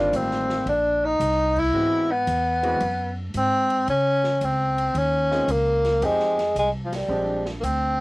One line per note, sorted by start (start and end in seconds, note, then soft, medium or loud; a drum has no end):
0.00 0.11 G1 medium
0.00 0.63 D#3 medium
0.00 0.63 G3 medium
0.00 0.63 A#3 medium
0.00 0.63 C4 medium
0.00 0.17 D4 medium
0.00 0.63 F4 medium
0.13 0.65 A1 medium
0.13 0.68 C4 medium
0.13 hi-hat pedal medium
0.13 ride medium
0.31 snare soft
0.49 snare soft
0.66 1.18 A#1 medium
0.66 1.06 D4 medium
0.66 ride medium
1.05 1.61 D#4 loud
1.20 1.72 C2 medium
1.20 hi-hat pedal medium
1.20 ride medium
1.56 2.13 E4 loud
1.56 kick medium
1.56 crash medium
1.73 2.25 G#2 medium
1.73 2.06 E3 medium
1.73 2.06 G#3 medium
1.73 2.06 B3 medium
1.73 2.07 C4 medium
1.73 2.07 F#4 medium
2.11 3.18 B3 medium
2.27 2.79 E2 loud
2.27 hi-hat pedal soft
2.27 ride medium
2.63 2.79 E3 medium
2.63 2.79 G#3 medium
2.63 2.79 B3 medium
2.63 2.79 C4 medium
2.63 2.79 F#4 medium
2.63 ride soft
2.80 3.32 F#2 medium
2.80 ride medium
3.34 3.86 G#2 medium
3.34 3.86 C4 loud
3.34 hi-hat pedal medium
3.34 ride medium
3.70 ride soft
3.88 4.40 C#3 medium
3.88 4.46 C#4 loud
3.88 ride medium
4.24 snare soft
4.41 4.93 C#2 medium
4.41 4.99 C4 loud
4.41 hi-hat pedal soft
4.41 ride medium
4.78 ride medium
4.95 5.47 D#2 medium
4.95 5.53 C#4 loud
4.95 ride medium
5.31 5.47 D#3 medium
5.31 5.47 G#3 medium
5.31 5.47 C4 medium
5.31 5.47 C#4 medium
5.31 5.47 F4 medium
5.31 snare soft
5.48 6.00 C#2 medium
5.48 6.06 A#3 medium
5.48 hi-hat pedal medium
5.48 ride medium
5.85 snare soft
5.85 ride soft
6.01 6.54 F2 medium
6.01 6.35 F3 medium
6.01 6.35 G#3 medium
6.01 6.57 G#3 medium
6.01 6.35 C4 medium
6.01 6.35 D#4 medium
6.01 6.35 G4 medium
6.01 ride medium
6.20 snare soft
6.38 snare soft
6.38 ride soft
6.55 7.08 C2 medium
6.55 6.70 G#3 medium
6.55 hi-hat pedal medium
6.55 ride medium
6.85 6.98 F3 medium
6.93 7.48 G3 medium
6.93 snare medium
6.93 ride medium
7.08 7.61 A#1 medium
7.08 7.42 F3 medium
7.08 7.42 G#3 medium
7.08 7.42 C4 medium
7.08 7.42 D4 medium
7.08 7.42 G4 medium
7.46 snare medium
7.60 8.00 D2 medium
7.60 7.66 A#3 medium
7.60 8.00 C4 medium
7.60 hi-hat pedal medium
7.60 ride medium